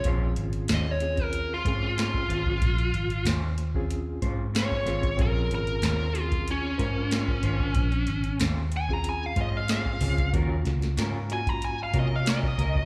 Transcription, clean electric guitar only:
\new Staff \with { instrumentName = "Clean electric guitar" } { \time 4/4 \key bes \minor \tempo 4 = 93 <aes des' f' c''>8 r8 <aes des' f' c''>8 r4 <des' f' c''>8 <aes des' f' c''>8 <des' f' c''>8 | r4 <aes des' f' c''>8 r4 <des' f' c''>8 <aes des' f' c''>8 <des' f' c''>8 | r4 <aes des' f' c''>8 r4 <des' f' c''>8 <aes des' f' c''>8 <des' f' c''>8 | r4 <aes des' f' c''>8 r4 <des' f' c''>8 <aes des' f' c''>8 <des' f' c''>8 |
<ges des' f' bes'>8 r8 <ges des' f' bes'>8 r4 <des' f' bes'>8 <ges des' f' bes'>8 <des' f' bes'>8 | }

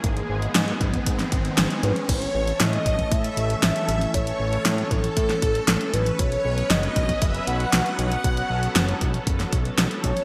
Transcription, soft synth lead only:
\new Staff \with { instrumentName = "Soft synth lead" } { \time 4/4 \key a \lydian \tempo 4 = 117 r2. r8 b'8 | cis''4 dis''4 e''4 e''4 | cis''4. a'2 b'8 | cis''4 dis''4 e''8 fis''4 fis''8~ |
fis''4. r2 cis''8 | }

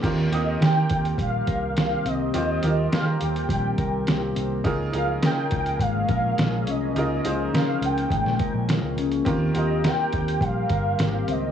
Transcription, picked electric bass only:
\new Staff \with { instrumentName = "Picked electric bass" } { \clef bass \time 4/4 \key ees \mixolydian \tempo 4 = 104 ees,8 ees,8 ees8 ees,8 bes,,8 c,4 c,8 | ees,8 ees,8 ees8 ees,8 bes,,8 c,8 c,8 c,8 | des,8 des,8 des8 des,8 aes,,8 bes,,8 bes,,8 c,8 | des,8 des,8 des8 des,8 aes,,16 bes,,16 r16 bes,,8 des,16 des,8 |
ees,8 ees,8. r16 ees,8 bes,,8 g,,8 aes,,8 des,8 | }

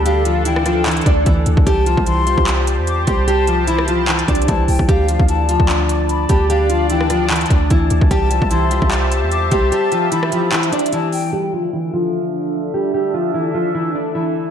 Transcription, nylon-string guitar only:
\new Staff \with { instrumentName = "Nylon-string guitar" } { \time 4/4 \key d \minor \tempo 4 = 149 <g g'>8 <f f'>8 <e e'>8 <f f'>8 <e e'>8 <d' d''>8 <e e'>4 | <g g'>8 <f f'>8 <e e'>8 <g f'>2 <g g'>8 | <g g'>8 <f f'>8 <e e'>8 <f f'>8 <e e'>8 <d' d''>8 <e e'>4 | <g g'>8 <f f'>8 <e e'>8 <f f'>2 <g g'>8 |
<g g'>8 <f f'>8 <e e'>8 <f f'>8 <e e'>8 <d' d''>8 <e e'>4 | <g g'>8 <f f'>8 <e e'>8 <g f'>2 <g g'>8 | <g g'>8 <f f'>8 <e e'>8 <f f'>8 <e e'>8 <d' d''>8 <e e'>4 | <g g'>8 <f f'>8 <e e'>8 <f f'>2 <g g'>8 |
<g g'>8 <f f'>8 <e e'>8 <f f'>8 <e e'>8 <d' d''>8 <e e'>4 | }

